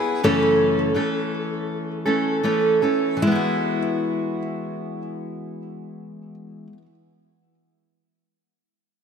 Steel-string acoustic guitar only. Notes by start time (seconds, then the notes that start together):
Already playing: B3 E4 G#4
0.24 F#2 C#3 E3 A3 C#4 A4
0.94 E3 A3 C#4 A4
2.06 E3 A3 C#4 A4
2.43 E3 A3 C#4 A4
2.82 E3 A3 C#4 A4
3.17 E3
3.22 G#3
3.27 B3
3.32 E4
3.36 F#4